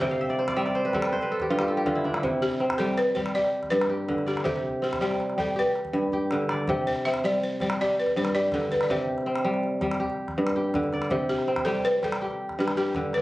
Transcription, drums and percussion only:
0.01 calabash thump medium
0.29 calabash click soft
0.39 calabash click soft
0.48 calabash thump medium
0.48 calabash click medium
0.57 calabash click soft
0.66 calabash click soft
0.75 calabash click soft
0.93 calabash thump medium
0.93 calabash click soft
1.02 calabash click medium
1.21 calabash click soft
1.40 calabash thump medium
1.40 calabash click soft
1.59 calabash click medium
1.86 calabash thump medium
1.86 calabash click soft
1.96 calabash click soft
2.04 calabash click soft
2.14 calabash click soft
2.24 calabash thump medium
2.51 calabash click soft
2.60 calabash click soft
2.70 calabash thump medium
2.70 calabash click medium
2.79 calabash click soft
2.89 calabash click soft
2.98 calabash click soft
3.17 calabash thump medium
3.17 calabash click soft
3.26 calabash click medium
3.44 calabash click soft
3.63 calabash thump medium
3.63 calabash click soft
3.81 calabash click medium
4.09 calabash thump medium
4.09 calabash click soft
4.18 calabash click soft
4.28 calabash click soft
4.37 calabash click soft
4.46 calabash thump medium
4.56 calabash click soft
4.93 calabash thump medium
4.93 calabash click medium
5.02 calabash click soft
5.11 calabash click soft
5.20 calabash click soft
5.30 calabash click soft
5.39 calabash thump medium
5.76 calabash click soft
5.85 calabash thump medium
5.94 calabash thump soft
6.12 calabash thump soft
6.31 calabash click soft
6.49 calabash click soft
6.68 calabash thump medium
6.96 calabash click soft
7.05 calabash click soft
7.14 calabash thump soft
7.14 calabash click soft
7.23 calabash click soft
7.33 calabash click soft
7.60 calabash thump medium
7.60 calabash click soft
7.70 calabash click medium
7.88 calabash click soft
8.06 calabash thump soft
8.06 calabash click soft
8.25 calabash click soft
8.52 calabash thump medium
8.52 calabash click soft
8.62 calabash click soft
8.71 calabash click soft
8.81 calabash click soft
8.90 calabash thump medium
9.18 calabash click soft
9.27 calabash click soft
9.36 calabash click medium
9.45 calabash click soft
9.54 calabash click soft
9.63 calabash click soft
9.81 calabash thump medium
9.81 calabash click soft
9.91 calabash click medium
10.10 calabash click soft
10.28 calabash thump medium
10.28 calabash click soft
10.47 calabash click medium
10.74 calabash thump medium
10.74 calabash click soft
10.84 calabash click soft
10.93 calabash click soft
11.02 calabash click soft
11.10 calabash thump medium
11.38 calabash click soft
11.48 calabash click soft
11.56 calabash thump medium
11.56 calabash click soft
11.66 calabash click soft
11.75 calabash click soft
11.85 calabash click soft
12.03 calabash thump medium
12.03 calabash click soft
12.12 calabash click medium
12.31 calabash click soft
12.49 calabash thump medium
12.49 calabash click soft
12.68 calabash click medium
12.95 calabash thump medium
12.95 calabash click soft
13.04 calabash click soft
13.13 calabash click soft

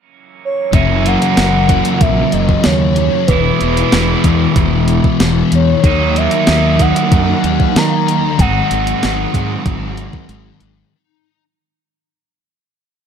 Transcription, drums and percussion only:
0.73 kick loud
0.73 closed hi-hat medium
1.06 closed hi-hat medium
1.22 closed hi-hat medium
1.37 snare loud
1.37 closed hi-hat medium
1.69 kick medium
1.69 closed hi-hat medium
1.85 closed hi-hat medium
2.01 kick loud
2.01 closed hi-hat medium
2.32 closed hi-hat medium
2.49 kick medium
2.64 snare loud
2.64 closed hi-hat medium
2.96 closed hi-hat medium
3.28 kick loud
3.28 closed hi-hat medium
3.61 closed hi-hat medium
3.77 closed hi-hat medium
3.92 snare loud
3.92 closed hi-hat medium
4.24 kick medium
4.24 closed hi-hat medium
4.56 kick loud
4.56 closed hi-hat medium
4.88 closed hi-hat medium
5.04 kick medium
5.20 snare loud
5.20 closed hi-hat medium
5.52 closed hi-hat medium
5.84 kick loud
5.84 closed hi-hat medium
6.16 closed hi-hat medium
6.31 closed hi-hat medium
6.47 snare loud
6.47 closed hi-hat medium
6.79 kick medium
6.79 closed hi-hat medium
6.96 closed hi-hat medium
7.12 kick loud
7.12 closed hi-hat medium
7.44 closed hi-hat medium
7.60 kick medium
7.76 snare loud
7.76 closed hi-hat medium
8.08 closed hi-hat medium
8.39 kick loud
8.39 closed hi-hat medium
8.71 closed hi-hat medium
8.87 closed hi-hat medium
9.03 snare medium
9.03 closed hi-hat medium
9.34 kick medium
9.34 closed hi-hat medium
9.66 kick loud
9.66 closed hi-hat medium
9.97 closed hi-hat medium
10.13 kick medium
10.29 closed hi-hat medium
10.60 closed hi-hat medium

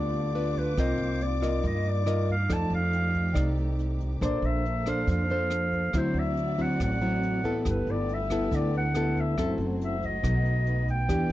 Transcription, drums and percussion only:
0.13 closed hi-hat soft
0.35 closed hi-hat soft
0.56 kick soft
0.56 closed hi-hat soft
0.78 kick medium
0.78 cross-stick medium
0.78 closed hi-hat soft
0.99 closed hi-hat soft
1.21 closed hi-hat soft
1.42 kick soft
1.42 cross-stick medium
1.42 closed hi-hat soft
1.64 kick medium
1.64 closed hi-hat soft
1.85 closed hi-hat soft
2.06 cross-stick medium
2.06 closed hi-hat soft
2.28 kick soft
2.28 closed hi-hat soft
2.50 kick medium
2.50 cross-stick medium
2.50 closed hi-hat soft
2.72 closed hi-hat soft
2.93 closed hi-hat soft
3.14 kick soft
3.14 closed hi-hat soft
3.35 kick medium
3.35 cross-stick medium
3.35 closed hi-hat soft
3.57 closed hi-hat soft
3.79 closed hi-hat soft
4.00 kick soft
4.00 closed hi-hat soft
4.22 kick medium
4.22 cross-stick medium
4.22 closed hi-hat soft
4.43 closed hi-hat soft
4.65 closed hi-hat soft
4.86 kick soft
4.86 cross-stick medium
4.86 closed hi-hat soft
5.07 kick medium
5.07 closed hi-hat soft
5.29 closed hi-hat soft
5.50 cross-stick medium
5.50 closed hi-hat soft
5.72 kick soft
5.72 closed hi-hat soft
5.93 kick medium
5.93 cross-stick medium
5.93 closed hi-hat soft
6.15 closed hi-hat soft
6.37 closed hi-hat soft
6.58 kick soft
6.58 closed hi-hat soft
6.80 kick medium
6.80 cross-stick medium
6.80 closed hi-hat soft
7.01 closed hi-hat soft
7.23 closed hi-hat soft
7.44 kick soft
7.44 closed hi-hat soft
7.65 kick medium
7.65 cross-stick medium
7.65 closed hi-hat soft
7.87 closed hi-hat soft
8.09 closed hi-hat soft
8.30 kick soft
8.30 cross-stick medium
8.30 closed hi-hat soft
8.52 kick medium
8.52 closed hi-hat soft
8.73 closed hi-hat soft
8.95 cross-stick medium
8.95 closed hi-hat soft
9.16 kick soft
9.16 closed hi-hat soft
9.38 kick medium
9.38 cross-stick medium
9.38 closed hi-hat soft
9.59 closed hi-hat soft
9.81 closed hi-hat soft
10.02 kick soft
10.02 closed hi-hat soft
10.24 kick medium
10.24 cross-stick medium
10.24 closed hi-hat soft
10.46 closed hi-hat soft
10.67 closed hi-hat soft
10.88 kick soft
10.88 closed hi-hat soft
11.09 kick medium
11.09 cross-stick medium
11.09 closed hi-hat medium

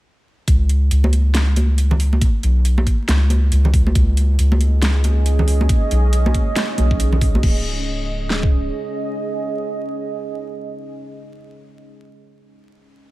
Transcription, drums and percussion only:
0.48 kick loud
0.48 closed hi-hat medium
0.69 closed hi-hat medium
0.91 closed hi-hat medium
1.04 high conga loud
1.13 closed hi-hat medium
1.35 snare loud
1.35 closed hi-hat medium
1.56 closed hi-hat medium
1.56 high conga medium
1.78 closed hi-hat medium
1.91 low conga medium
2.00 open hi-hat loud
2.13 high conga medium
2.21 kick loud
2.21 closed hi-hat medium
2.43 closed hi-hat medium
2.65 closed hi-hat medium
2.78 high conga loud
2.87 kick medium
2.87 closed hi-hat medium
3.08 snare loud
3.08 closed hi-hat medium
3.30 closed hi-hat medium
3.30 high conga medium
3.52 closed hi-hat medium
3.65 low conga medium
3.74 kick loud
3.74 open hi-hat loud
3.87 high conga medium
3.95 kick loud
3.95 closed hi-hat medium
4.17 closed hi-hat medium
4.39 closed hi-hat medium
4.52 high conga loud
4.61 closed hi-hat medium
4.82 snare loud
4.82 closed hi-hat medium
5.04 closed hi-hat medium
5.04 high conga medium
5.26 closed hi-hat medium
5.39 low conga medium
5.48 open hi-hat loud
5.61 high conga loud
5.69 kick loud
5.69 closed hi-hat medium
5.91 closed hi-hat medium
6.13 closed hi-hat medium
6.26 high conga loud
6.34 kick medium
6.34 closed hi-hat medium
6.56 snare loud
6.56 closed hi-hat medium
6.78 closed hi-hat medium
6.78 high conga medium
6.91 kick medium
7.00 closed hi-hat medium
7.13 low conga medium
7.21 kick loud
7.21 open hi-hat medium
7.35 high conga medium
7.43 kick loud
7.43 crash medium
8.30 snare medium
8.43 kick medium

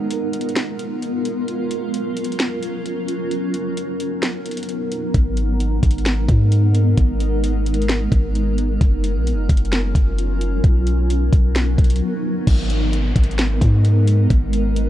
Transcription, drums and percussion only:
0.11 closed hi-hat medium
0.33 closed hi-hat medium
0.41 closed hi-hat medium
0.49 closed hi-hat soft
0.56 snare loud
0.56 closed hi-hat medium
0.79 closed hi-hat medium
1.02 closed hi-hat medium
1.25 closed hi-hat medium
1.48 closed hi-hat medium
1.71 closed hi-hat medium
1.94 closed hi-hat medium
2.17 closed hi-hat medium
2.24 closed hi-hat medium
2.32 closed hi-hat soft
2.40 snare loud
2.40 closed hi-hat medium
2.63 closed hi-hat medium
2.86 closed hi-hat medium
3.08 closed hi-hat medium
3.31 closed hi-hat medium
3.54 closed hi-hat medium
3.77 closed hi-hat medium
4.00 closed hi-hat medium
4.23 snare loud
4.23 closed hi-hat medium
4.46 closed hi-hat medium
4.51 closed hi-hat medium
4.57 closed hi-hat medium
4.63 closed hi-hat medium
4.69 closed hi-hat medium
4.92 closed hi-hat medium
5.14 kick loud
5.14 closed hi-hat medium
5.37 closed hi-hat medium
5.60 closed hi-hat medium
5.83 kick medium
5.83 closed hi-hat medium
5.91 closed hi-hat medium
5.98 closed hi-hat soft
6.06 snare loud
6.06 closed hi-hat medium
6.29 kick medium
6.29 closed hi-hat medium
6.52 closed hi-hat medium
6.75 closed hi-hat medium
6.97 kick loud
6.97 closed hi-hat medium
7.20 closed hi-hat medium
7.44 closed hi-hat medium
7.66 closed hi-hat medium
7.74 closed hi-hat medium
7.82 closed hi-hat soft
7.89 snare loud
7.89 closed hi-hat medium
8.12 kick medium
8.12 closed hi-hat medium
8.35 closed hi-hat medium
8.58 closed hi-hat medium
8.81 kick loud
8.81 closed hi-hat medium
9.04 closed hi-hat medium
9.27 closed hi-hat medium
9.49 kick medium
9.49 closed hi-hat medium
9.57 closed hi-hat medium
9.65 closed hi-hat soft
9.73 snare loud
9.73 closed hi-hat medium
9.95 kick medium
9.95 closed hi-hat medium
10.18 closed hi-hat medium
10.41 closed hi-hat medium
10.64 kick loud
10.64 closed hi-hat medium
10.87 closed hi-hat medium
11.10 closed hi-hat medium
11.33 kick medium
11.33 closed hi-hat medium
11.56 snare loud
11.56 closed hi-hat medium
11.78 kick medium
11.78 closed hi-hat medium
11.84 closed hi-hat medium
11.90 closed hi-hat medium
11.96 closed hi-hat medium
12.47 kick loud
12.47 closed hi-hat medium
12.47 crash loud
12.70 closed hi-hat medium
12.93 closed hi-hat medium
13.16 kick medium
13.16 closed hi-hat medium
13.24 closed hi-hat medium
13.31 closed hi-hat soft
13.39 snare loud
13.39 closed hi-hat medium
13.61 kick medium
13.61 closed hi-hat medium
13.85 closed hi-hat medium
14.08 closed hi-hat medium
14.30 kick loud
14.30 closed hi-hat medium
14.53 closed hi-hat medium
14.76 closed hi-hat medium

